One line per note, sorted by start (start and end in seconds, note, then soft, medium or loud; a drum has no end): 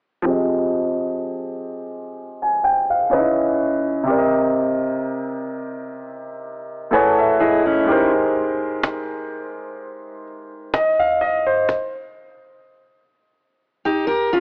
0.22 3.06 F3 medium
0.22 3.07 C4 medium
0.22 3.08 G4 medium
0.28 3.09 G#4 medium
0.28 3.10 D#5 medium
2.42 2.63 G#5 medium
2.64 2.89 G5 medium
2.90 3.35 F5 medium
3.10 4.06 C#3 medium
3.10 4.06 C#4 medium
3.10 3.19 D#4 soft
3.10 4.07 B4 medium
3.10 4.08 D#5 medium
3.18 4.10 E4 medium
4.03 6.87 C3 medium
4.03 6.88 C4 medium
4.03 6.89 G4 medium
4.09 6.90 A#4 medium
4.09 4.16 D5 medium
4.18 6.94 D#5 medium
6.91 7.87 A2 medium
6.91 7.87 A3 medium
6.91 7.38 F#4 medium
6.91 7.88 G#4 medium
6.91 7.38 A4 medium
6.91 7.88 B4 medium
6.91 7.89 C#5 medium
6.91 7.17 G#5 medium
7.19 7.39 E5 medium
7.40 7.65 E4 medium
7.40 7.65 G#4 medium
7.40 7.85 D#5 medium
7.66 8.11 C#4 medium
7.66 8.11 E4 medium
7.84 11.63 G#2 medium
7.84 11.64 G#3 medium
7.84 11.65 G4 medium
7.90 11.66 A#4 medium
7.90 10.24 C5 medium
8.83 cajon slap loud
10.74 10.98 D#5 medium
10.74 cajon slap loud
10.99 11.20 F5 medium
11.21 11.46 D#5 medium
11.47 11.92 C5 medium
11.69 cajon bass medium
11.69 cajon slap medium
13.85 14.06 D#4 medium
13.85 14.06 G4 medium
14.07 14.32 G4 medium
14.07 14.31 A#4 medium
14.33 14.40 C#4 medium
14.33 14.40 F4 medium